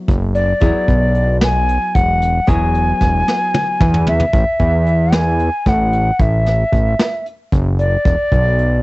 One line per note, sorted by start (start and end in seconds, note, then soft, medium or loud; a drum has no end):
0.00 0.58 F#3 medium
0.00 0.58 B3 medium
0.00 0.58 E4 soft
0.00 0.58 G#4 medium
0.08 0.54 F#1 medium
0.08 kick medium
0.08 closed hi-hat medium
0.35 1.37 D5 medium
0.35 closed hi-hat medium
0.61 0.73 E1 medium
0.61 2.44 F#3 medium
0.61 2.44 B3 soft
0.61 2.44 E4 medium
0.61 2.44 G#4 medium
0.61 kick medium
0.61 closed hi-hat medium
0.88 1.78 B1 medium
0.88 kick medium
0.88 closed hi-hat medium
1.15 closed hi-hat medium
1.41 1.96 G#5 loud
1.41 snare medium
1.41 closed hi-hat medium
1.69 closed hi-hat medium
1.95 2.40 E1 medium
1.95 2.50 F#5 medium
1.95 kick medium
1.95 closed hi-hat medium
2.22 closed hi-hat medium
2.47 2.93 E1 medium
2.47 4.30 F#3 medium
2.47 4.30 B3 medium
2.47 4.30 E4 soft
2.47 4.30 G#4 medium
2.47 4.07 G#5 loud
2.47 kick medium
2.47 closed hi-hat medium
2.74 closed hi-hat medium
3.01 3.23 E1 medium
3.01 kick medium
3.01 snare soft
3.01 closed hi-hat medium
3.28 snare soft
3.54 high tom medium
3.80 4.25 E2 medium
3.80 kick medium
3.80 mid tom medium
3.94 mid tom medium
4.07 5.16 E5 medium
4.07 floor tom medium
4.20 floor tom medium
4.33 4.45 A1 medium
4.33 kick loud
4.33 closed hi-hat medium
4.59 5.50 E2 medium
4.59 kick medium
4.59 closed hi-hat soft
4.86 closed hi-hat medium
5.12 5.70 G#5 medium
5.12 snare loud
5.12 closed hi-hat medium
5.39 closed hi-hat medium
5.66 6.11 A1 medium
5.66 6.23 F#5 medium
5.66 kick medium
5.66 snare soft
5.66 closed hi-hat medium
5.93 closed hi-hat medium
6.19 6.64 A1 medium
6.19 7.26 E5 medium
6.19 kick medium
6.19 closed hi-hat medium
6.46 snare soft
6.46 closed hi-hat medium
6.72 6.95 A1 medium
6.72 kick medium
6.72 closed hi-hat medium
6.99 snare medium
6.99 closed hi-hat medium
7.26 closed hi-hat medium
7.52 7.97 F#1 loud
7.52 kick medium
7.52 closed hi-hat medium
7.79 8.82 D5 medium
7.79 closed hi-hat medium
8.05 8.16 E1 medium
8.05 kick loud
8.05 closed hi-hat medium
8.32 8.82 B1 medium
8.32 kick medium
8.32 closed hi-hat medium
8.59 closed hi-hat soft